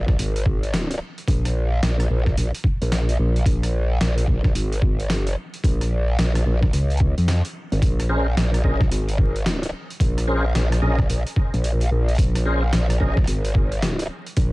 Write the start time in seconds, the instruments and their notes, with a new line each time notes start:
Already playing: wobble bass A#1
0.08 kick, cross-stick
0.19 wobble bass G#1, closed hi-hat
0.36 closed hi-hat
0.46 kick
0.63 closed hi-hat
0.74 snare, closed hi-hat
0.91 closed hi-hat
1.18 closed hi-hat
1.28 wobble bass A#1, kick, closed hi-hat
1.45 cross-stick, closed hi-hat
1.82 wobble bass A#1, snare, closed hi-hat
2.00 cross-stick, closed hi-hat
2.10 wobble bass A#1
2.26 kick, cross-stick
2.37 wobble bass A#1, closed hi-hat
2.54 closed hi-hat
2.64 kick
2.81 wobble bass A#1, closed hi-hat
2.92 snare, closed hi-hat
3.09 closed hi-hat
3.19 wobble bass A#1
3.36 closed hi-hat
3.46 wobble bass A#1, kick, closed hi-hat
3.63 cross-stick, closed hi-hat
4.01 wobble bass A#1, snare, closed hi-hat
4.18 closed hi-hat
4.27 wobble bass A#1, kick
4.44 kick, cross-stick
4.55 wobble bass G#1, closed hi-hat
4.72 closed hi-hat
4.82 kick
5.00 closed hi-hat
5.10 wobble bass G1, snare, closed hi-hat
5.27 closed hi-hat
5.54 closed hi-hat
5.64 wobble bass A#1, kick, closed hi-hat
5.81 cross-stick, closed hi-hat
6.19 wobble bass A#1, snare, closed hi-hat
6.35 cross-stick, closed hi-hat
6.46 wobble bass A#1
6.63 kick, cross-stick
6.73 wobble bass C#2, closed hi-hat
6.90 closed hi-hat
6.97 kick, closed hi-hat
7.17 wobble bass F2, closed hi-hat
7.28 snare, closed hi-hat
7.45 closed hi-hat
7.72 wobble bass G#1, closed hi-hat
7.82 wobble bass A#1, kick, closed hi-hat
8.00 cross-stick, closed hi-hat
8.09 tonewheel organ C#4 G#4 A#4 C5
8.37 wobble bass A#1, snare, closed hi-hat
8.54 cross-stick, closed hi-hat
8.64 wobble bass A#1, tonewheel organ C#4 G#4 A#4 D#5, kick
8.81 kick, cross-stick
8.91 wobble bass G#1, closed hi-hat
9.09 closed hi-hat
9.18 kick
9.36 closed hi-hat
9.46 snare, closed hi-hat
9.63 closed hi-hat
9.90 closed hi-hat
10.00 wobble bass A#1, kick, closed hi-hat
10.18 cross-stick, closed hi-hat
10.27 tonewheel organ C#4 G#4 A#4 C5
10.55 wobble bass A#1, snare, closed hi-hat
10.72 cross-stick, closed hi-hat
10.82 wobble bass A#1, tonewheel organ C#4 G#4 A#4 D#5
10.99 kick, cross-stick
11.09 wobble bass A#1, closed hi-hat
11.27 closed hi-hat
11.36 kick
11.53 wobble bass A#1, closed hi-hat
11.64 closed hi-hat
11.81 closed hi-hat
11.91 wobble bass A#1
12.08 closed hi-hat
12.15 wobble bass A#1, kick, closed hi-hat
12.19 closed hi-hat
12.35 cross-stick, closed hi-hat
12.46 tonewheel organ C#4 G#4 A#4 C5
12.73 wobble bass A#1, snare, closed hi-hat
12.90 cross-stick, closed hi-hat
13.00 wobble bass A#1, tonewheel organ C#4 G#4 A#4 D#5, kick
13.17 kick, cross-stick
13.24 wobble bass G#1, cross-stick, closed hi-hat
13.45 closed hi-hat
13.55 kick
13.72 closed hi-hat
13.82 snare, closed hi-hat
13.99 closed hi-hat
14.27 closed hi-hat
14.37 wobble bass A#1, kick, closed hi-hat